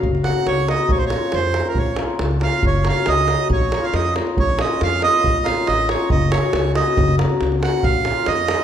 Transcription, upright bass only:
X:1
M:2/4
L:1/8
Q:1/4=138
K:Bbm
V:1 name="Upright bass" clef=bass
G,,,2 D,,2 | B,,,2 F,,2 | B,,,2 D,,2 | G,,,2 D,,2 |
B,,,2 F,,2 | B,,,2 F,,2 | B,,,2 =A,,,2 | G,,,2 D,,2 |
G,,,2 D,,2 | B,,,2 F,,2 |]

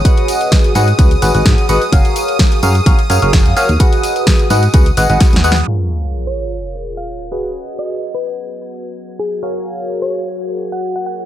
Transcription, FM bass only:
X:1
M:4/4
L:1/16
Q:"Swing 16ths" 1/4=128
K:G#dor
V:1 name="FM bass" clef=bass
z6 G,, z C,, z G,,, G,,, G,, z G,,, z | F,,, z4 z F,, z A,,, z F,, F,,,2 F,, z D,, | z6 G,, z C,, z G,,, G,,, z D,,3 | z16 |
z16 | z16 |]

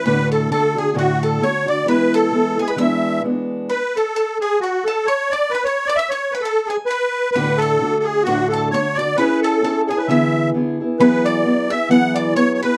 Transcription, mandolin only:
X:1
M:2/4
L:1/16
Q:"Swing" 1/4=132
K:Emix
V:1 name="Mandolin"
b2 a2 a2 g2 | f2 a2 c'2 d'2 | b2 a4 g b | e'4 z4 |
b2 a2 a2 g2 | f2 a2 c'2 d'2 | b c'2 d' e' c'2 b | a2 g2 b4 |
b2 a6 | f2 a2 c'2 d'2 | b2 a2 a2 g2 | e'4 z4 |
b2 d'4 e'2 | f2 d'2 c'2 b2 |]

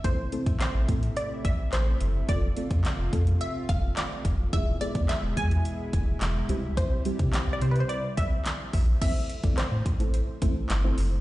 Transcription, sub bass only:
X:1
M:4/4
L:1/16
Q:1/4=107
K:Am
V:1 name="Sub bass" clef=bass
A,,,2 z A,, z A,,, A,,2 z2 A,,,2 A,,,2 ^F,,,2 | F,,,2 z F,, z F,,, F,,2 z2 F,,,2 z2 F,,,2 | E,,,2 z E,, z E,,, E,,2 z2 E,,,2 E,,,2 C,,2 | C,,2 z C, z C,, C,2 z2 C,,2 z2 _B,,,2 |
A,,, z2 A,,, A,, A,, z A,,,2 z A,,,2 G,,,2 ^F,,,2 |]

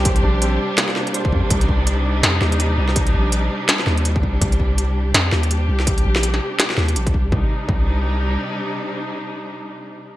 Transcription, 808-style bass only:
X:1
M:4/4
L:1/8
Q:"Swing 16ths" 1/4=165
K:Cm
V:1 name="808-style bass" clef=bass
C,, B,,,2 z4 F,, | C,,4 F,, E,,2 C,,- | C,, B,,,2 z2 E,,2 C,, | C,,4 F,, E,,2 C,,- |
C,, B,,,2 z2 E,, B,,, C,, | C,, z C,,4 z2 | z8 |]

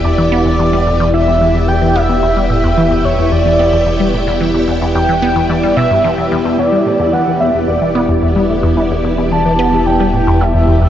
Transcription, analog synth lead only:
X:1
M:4/4
L:1/8
Q:1/4=110
K:Em
V:1 name="Analog synth lead"
d4 e2 g e- | e3 ^c d3 z | z2 g2 d e2 z | d2 f e d3 z |
z2 a2 g2 e2 |]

